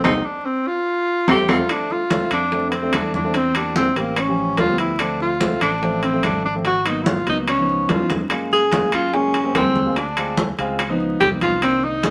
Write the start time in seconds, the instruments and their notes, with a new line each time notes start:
0.04 fingered electric bass C2, grand piano G3 A#3 C4, tenor saxophone C4 D#4, high bongo, high conga, high timbale, claves
0.25 tenor saxophone D4
0.45 tenor saxophone C4
0.67 tenor saxophone F4
1.28 fingered electric bass F2, grand piano F3 A3 C4, tenor saxophone C4 G4, high bongo, high conga, high timbale, claves
1.48 fingered electric bass F2, grand piano F3 A3 C4, tenor saxophone C4 F4, high bongo, high conga, high timbale, claves
1.69 grand piano A3 C4 D4, tenor saxophone D4, high bongo, high conga, high timbale, claves
1.90 tenor saxophone F4, high bongo, high conga
2.10 grand piano A3 C4 F4, high bongo, high conga, high timbale
2.31 fingered electric bass F2, tenor saxophone D4, high conga, high timbale, claves
2.52 grand piano A3 C4 D4, high bongo, high conga
2.70 tenor saxophone B3, high conga, high timbale
2.74 tenor saxophone C4
2.82 grand piano A3 C4 D4
2.93 fingered electric bass E2, tenor saxophone D4, high bongo, low bongo, high conga, high timbale, claves
3.14 tenor saxophone D4, high bongo, high conga
3.24 grand piano A3 C4 D4
3.34 tenor saxophone C4, high bongo, high conga, high timbale
3.55 grand piano G3 A#3 D4, tenor saxophone D4, high bongo, high conga, high timbale, claves
3.76 tenor saxophone C4, high bongo, high conga
3.96 fingered electric bass A1, grand piano G3 A#3 C4, tenor saxophone A#3, high bongo, high conga, high timbale
4.16 tenor saxophone C#4, high bongo, high conga, high timbale, claves
4.27 grand piano F3 G3 C#4
4.38 high conga
4.57 fingered electric bass D2, tenor saxophone F4, high bongo, low bongo, high conga, high timbale, low timbale
4.68 grand piano F3 G3 B3
4.78 tenor saxophone E4, high bongo, high timbale
4.99 grand piano F3 A3 C4, tenor saxophone D4, high bongo, high conga, high timbale, claves
5.20 tenor saxophone F4, high bongo, high conga
5.40 grand piano F3 A3 C4, high bongo, high conga, high timbale
5.61 fingered electric bass A1, tenor saxophone D4, high conga, high timbale, claves
5.81 grand piano F3 A3 C4, high bongo, high conga
6.03 tenor saxophone C4, high conga, high timbale
6.13 grand piano F3 A3 C4
6.23 fingered electric bass G#1, tenor saxophone D4, high bongo, low bongo, high conga, high timbale, claves
6.44 tenor saxophone D4, high bongo
6.54 grand piano F3 A3 C4
6.65 tenor saxophone F#4, high bongo, high conga, high timbale
6.85 grand piano F#3 A#3 B3, tenor saxophone D#4, high bongo, high conga, high timbale, claves
7.03 tenor saxophone E4, high bongo, high conga
7.08 tenor saxophone F4
7.26 fingered electric bass C#2, grand piano F#3 A#3 B3, tenor saxophone D#4, high bongo, high conga, high timbale
7.47 tenor saxophone C#4, high bongo, high conga, high timbale, claves
7.57 grand piano F3 B3 D#4
7.69 high conga
7.89 fingered electric bass F#2, tenor saxophone F4, high bongo, high conga, high timbale, low timbale
7.98 grand piano F3 B3 D#4
8.10 low bongo, high conga, high timbale
8.29 grand piano G#3 A#3 F4, high bongo, high conga, high timbale, claves
8.52 tenor saxophone G#4, high bongo, high conga
8.72 grand piano G#3 A#3 F4, high bongo, high conga, high timbale
8.92 fingered electric bass F#2, tenor saxophone F4, high bongo, high conga, high timbale, claves
9.12 grand piano G#3 A#3 G#4, tenor saxophone C#4, high bongo, high conga
9.34 high conga, high timbale
9.43 grand piano G#3 A#3 C4
9.55 fingered electric bass D2, tenor saxophone C4, high bongo, low bongo, high conga, high timbale, low timbale, claves
9.76 high bongo, high conga
9.86 grand piano G#3 A#3 F4
9.96 tenor saxophone D4, high bongo, high conga, high timbale
10.16 grand piano G#3 C4 F4, high bongo, high conga, high timbale, claves
10.37 high bongo, high conga
10.58 fingered electric bass C#2, grand piano G#3 C4 F4, high bongo, high conga, high timbale
10.79 high bongo, high conga, high timbale, claves
10.89 grand piano F3 B3 D#4
11.00 high conga
11.21 fingered electric bass C2, tenor saxophone G4, high bongo, low bongo, high conga, high timbale
11.31 grand piano F3 B3 D#4
11.41 tenor saxophone F4, high bongo, high conga, high timbale
11.62 grand piano D#3 A#3 D4, tenor saxophone C4, high bongo, high conga, high timbale, claves
11.83 tenor saxophone D#4, high bongo, high conga
12.03 grand piano D#3 A#3 D4, high bongo, high conga, high timbale